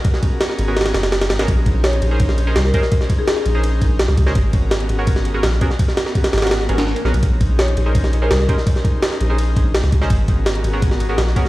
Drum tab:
RD |x---x---x---x---xxx-x-x-x-x-x-x-|x---x---x-x-x---x---x---x---x---|x---x---x---x---x---x---x---x---|x---x---x-x-x---x---x---x---x---|
SD |--o-----o-o-----ooo-o-o-o-o-o-o-|--------o---------o-----o-o---o-|--o-----o-o-------------o-o---o-|--------o---------o-----o-o---o-|
BD |o---o---------------------------|o---o-----------o-----------o---|o---o---------------o-------o---|o---o-----------o-----------o---|

RD |x---x---x-x-xxxxx---x-x---x---x-|x---x---x-x-x---x---x---x---x---|x---x---x---x---x---x---x---x---|x---x---x-x-x---x---x---x---x---|
SD |--o-o-o---o-ooooo-o---o-o---o---|--------o---------o-----o-o---o-|--o-----o-o-------------o-o---o-|--------o---------o-----o-o---o-|
BD |o-------o-----------------------|o---o-----------o-----------o---|o---o---------------o-------o---|o---o-----------o-----------o---|